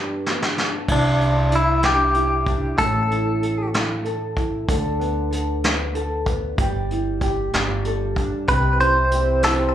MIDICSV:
0, 0, Header, 1, 6, 480
1, 0, Start_track
1, 0, Key_signature, 0, "major"
1, 0, Tempo, 632911
1, 674, Time_signature, 6, 3, 24, 8
1, 7393, End_track
2, 0, Start_track
2, 0, Title_t, "Clean electric guitar"
2, 0, Program_c, 0, 27
2, 697, Note_on_c, 0, 62, 67
2, 1179, Note_on_c, 0, 64, 68
2, 1180, Note_off_c, 0, 62, 0
2, 1404, Note_off_c, 0, 64, 0
2, 1407, Note_on_c, 0, 67, 81
2, 2109, Note_off_c, 0, 67, 0
2, 2112, Note_on_c, 0, 69, 79
2, 2804, Note_off_c, 0, 69, 0
2, 6437, Note_on_c, 0, 71, 84
2, 6675, Note_off_c, 0, 71, 0
2, 6678, Note_on_c, 0, 72, 101
2, 7160, Note_off_c, 0, 72, 0
2, 7163, Note_on_c, 0, 69, 88
2, 7226, Note_off_c, 0, 69, 0
2, 7393, End_track
3, 0, Start_track
3, 0, Title_t, "Nylon-string guitar"
3, 0, Program_c, 1, 24
3, 0, Note_on_c, 1, 43, 56
3, 0, Note_on_c, 1, 59, 46
3, 0, Note_on_c, 1, 62, 43
3, 0, Note_on_c, 1, 67, 48
3, 192, Note_off_c, 1, 59, 0
3, 203, Note_on_c, 1, 59, 52
3, 434, Note_off_c, 1, 62, 0
3, 437, Note_on_c, 1, 62, 51
3, 673, Note_off_c, 1, 43, 0
3, 673, Note_on_c, 1, 48, 62
3, 675, Note_off_c, 1, 67, 0
3, 678, Note_on_c, 1, 64, 55
3, 724, Note_off_c, 1, 62, 0
3, 727, Note_off_c, 1, 59, 0
3, 923, Note_on_c, 1, 62, 49
3, 1146, Note_off_c, 1, 64, 0
3, 1149, Note_on_c, 1, 64, 47
3, 1386, Note_off_c, 1, 62, 0
3, 1395, Note_on_c, 1, 62, 51
3, 1628, Note_off_c, 1, 64, 0
3, 1631, Note_on_c, 1, 64, 57
3, 1858, Note_off_c, 1, 62, 0
3, 1867, Note_on_c, 1, 62, 51
3, 2102, Note_off_c, 1, 48, 0
3, 2105, Note_on_c, 1, 45, 63
3, 2108, Note_off_c, 1, 64, 0
3, 2111, Note_on_c, 1, 69, 60
3, 2159, Note_off_c, 1, 62, 0
3, 2357, Note_on_c, 1, 64, 52
3, 2592, Note_off_c, 1, 69, 0
3, 2595, Note_on_c, 1, 69, 54
3, 2823, Note_off_c, 1, 64, 0
3, 2832, Note_on_c, 1, 64, 51
3, 3065, Note_off_c, 1, 69, 0
3, 3068, Note_on_c, 1, 69, 57
3, 3298, Note_off_c, 1, 64, 0
3, 3307, Note_on_c, 1, 64, 51
3, 3544, Note_off_c, 1, 69, 0
3, 3547, Note_off_c, 1, 45, 0
3, 3550, Note_on_c, 1, 50, 74
3, 3556, Note_on_c, 1, 69, 66
3, 3599, Note_off_c, 1, 64, 0
3, 3789, Note_on_c, 1, 59, 52
3, 4016, Note_off_c, 1, 69, 0
3, 4025, Note_on_c, 1, 69, 56
3, 4265, Note_off_c, 1, 59, 0
3, 4274, Note_on_c, 1, 59, 50
3, 4503, Note_off_c, 1, 69, 0
3, 4512, Note_on_c, 1, 69, 62
3, 4748, Note_off_c, 1, 59, 0
3, 4758, Note_on_c, 1, 59, 56
3, 4993, Note_off_c, 1, 50, 0
3, 4994, Note_off_c, 1, 69, 0
3, 5001, Note_on_c, 1, 55, 68
3, 5007, Note_on_c, 1, 67, 54
3, 5044, Note_off_c, 1, 59, 0
3, 5243, Note_on_c, 1, 64, 50
3, 5475, Note_off_c, 1, 67, 0
3, 5478, Note_on_c, 1, 67, 55
3, 5710, Note_off_c, 1, 55, 0
3, 5713, Note_on_c, 1, 55, 64
3, 5767, Note_off_c, 1, 64, 0
3, 5958, Note_off_c, 1, 67, 0
3, 5961, Note_on_c, 1, 69, 65
3, 6194, Note_on_c, 1, 62, 51
3, 6437, Note_off_c, 1, 69, 0
3, 6439, Note_on_c, 1, 48, 68
3, 6443, Note_on_c, 1, 67, 54
3, 6482, Note_off_c, 1, 62, 0
3, 6674, Note_on_c, 1, 64, 54
3, 6911, Note_off_c, 1, 67, 0
3, 6914, Note_on_c, 1, 67, 50
3, 7153, Note_off_c, 1, 64, 0
3, 7162, Note_on_c, 1, 64, 50
3, 7392, Note_off_c, 1, 67, 0
3, 7393, Note_off_c, 1, 48, 0
3, 7393, Note_off_c, 1, 55, 0
3, 7393, Note_off_c, 1, 64, 0
3, 7393, End_track
4, 0, Start_track
4, 0, Title_t, "French horn section"
4, 0, Program_c, 2, 60
4, 6424, Note_on_c, 2, 60, 80
4, 6426, Note_on_c, 2, 52, 72
4, 6426, Note_on_c, 2, 55, 56
4, 7393, Note_off_c, 2, 52, 0
4, 7393, Note_off_c, 2, 55, 0
4, 7393, Note_off_c, 2, 60, 0
4, 7393, End_track
5, 0, Start_track
5, 0, Title_t, "Upright bass"
5, 0, Program_c, 3, 32
5, 671, Note_on_c, 3, 36, 88
5, 2083, Note_off_c, 3, 36, 0
5, 2112, Note_on_c, 3, 33, 84
5, 3524, Note_off_c, 3, 33, 0
5, 3553, Note_on_c, 3, 38, 101
5, 4964, Note_off_c, 3, 38, 0
5, 4991, Note_on_c, 3, 31, 88
5, 5682, Note_off_c, 3, 31, 0
5, 5717, Note_on_c, 3, 31, 91
5, 6166, Note_off_c, 3, 31, 0
5, 6435, Note_on_c, 3, 36, 94
5, 7393, Note_off_c, 3, 36, 0
5, 7393, End_track
6, 0, Start_track
6, 0, Title_t, "Drums"
6, 201, Note_on_c, 9, 38, 61
6, 276, Note_off_c, 9, 38, 0
6, 321, Note_on_c, 9, 38, 65
6, 397, Note_off_c, 9, 38, 0
6, 440, Note_on_c, 9, 38, 69
6, 516, Note_off_c, 9, 38, 0
6, 671, Note_on_c, 9, 36, 101
6, 671, Note_on_c, 9, 49, 83
6, 746, Note_off_c, 9, 49, 0
6, 747, Note_off_c, 9, 36, 0
6, 917, Note_on_c, 9, 42, 45
6, 993, Note_off_c, 9, 42, 0
6, 1150, Note_on_c, 9, 42, 64
6, 1226, Note_off_c, 9, 42, 0
6, 1386, Note_on_c, 9, 42, 72
6, 1391, Note_on_c, 9, 38, 81
6, 1462, Note_off_c, 9, 42, 0
6, 1467, Note_off_c, 9, 38, 0
6, 1626, Note_on_c, 9, 42, 51
6, 1702, Note_off_c, 9, 42, 0
6, 1870, Note_on_c, 9, 36, 82
6, 1876, Note_on_c, 9, 42, 51
6, 1945, Note_off_c, 9, 36, 0
6, 1951, Note_off_c, 9, 42, 0
6, 2110, Note_on_c, 9, 42, 88
6, 2112, Note_on_c, 9, 36, 108
6, 2186, Note_off_c, 9, 42, 0
6, 2187, Note_off_c, 9, 36, 0
6, 2361, Note_on_c, 9, 42, 41
6, 2437, Note_off_c, 9, 42, 0
6, 2599, Note_on_c, 9, 42, 66
6, 2675, Note_off_c, 9, 42, 0
6, 2837, Note_on_c, 9, 42, 71
6, 2842, Note_on_c, 9, 38, 88
6, 2912, Note_off_c, 9, 42, 0
6, 2917, Note_off_c, 9, 38, 0
6, 3074, Note_on_c, 9, 42, 44
6, 3150, Note_off_c, 9, 42, 0
6, 3312, Note_on_c, 9, 36, 76
6, 3319, Note_on_c, 9, 42, 50
6, 3388, Note_off_c, 9, 36, 0
6, 3395, Note_off_c, 9, 42, 0
6, 3554, Note_on_c, 9, 36, 101
6, 3556, Note_on_c, 9, 42, 92
6, 3630, Note_off_c, 9, 36, 0
6, 3632, Note_off_c, 9, 42, 0
6, 3801, Note_on_c, 9, 42, 42
6, 3877, Note_off_c, 9, 42, 0
6, 4037, Note_on_c, 9, 42, 64
6, 4113, Note_off_c, 9, 42, 0
6, 4276, Note_on_c, 9, 42, 74
6, 4281, Note_on_c, 9, 38, 78
6, 4351, Note_off_c, 9, 42, 0
6, 4356, Note_off_c, 9, 38, 0
6, 4511, Note_on_c, 9, 42, 44
6, 4587, Note_off_c, 9, 42, 0
6, 4750, Note_on_c, 9, 36, 82
6, 4756, Note_on_c, 9, 42, 54
6, 4826, Note_off_c, 9, 36, 0
6, 4832, Note_off_c, 9, 42, 0
6, 4991, Note_on_c, 9, 42, 89
6, 4992, Note_on_c, 9, 36, 105
6, 5066, Note_off_c, 9, 42, 0
6, 5068, Note_off_c, 9, 36, 0
6, 5238, Note_on_c, 9, 42, 41
6, 5314, Note_off_c, 9, 42, 0
6, 5470, Note_on_c, 9, 36, 75
6, 5471, Note_on_c, 9, 42, 65
6, 5546, Note_off_c, 9, 36, 0
6, 5547, Note_off_c, 9, 42, 0
6, 5714, Note_on_c, 9, 42, 78
6, 5719, Note_on_c, 9, 38, 82
6, 5790, Note_off_c, 9, 42, 0
6, 5795, Note_off_c, 9, 38, 0
6, 5951, Note_on_c, 9, 42, 45
6, 6027, Note_off_c, 9, 42, 0
6, 6191, Note_on_c, 9, 36, 73
6, 6198, Note_on_c, 9, 42, 51
6, 6267, Note_off_c, 9, 36, 0
6, 6274, Note_off_c, 9, 42, 0
6, 6433, Note_on_c, 9, 42, 85
6, 6434, Note_on_c, 9, 36, 105
6, 6509, Note_off_c, 9, 42, 0
6, 6510, Note_off_c, 9, 36, 0
6, 6676, Note_on_c, 9, 42, 49
6, 6752, Note_off_c, 9, 42, 0
6, 6912, Note_on_c, 9, 42, 65
6, 6988, Note_off_c, 9, 42, 0
6, 7149, Note_on_c, 9, 42, 83
6, 7154, Note_on_c, 9, 38, 86
6, 7225, Note_off_c, 9, 42, 0
6, 7230, Note_off_c, 9, 38, 0
6, 7393, End_track
0, 0, End_of_file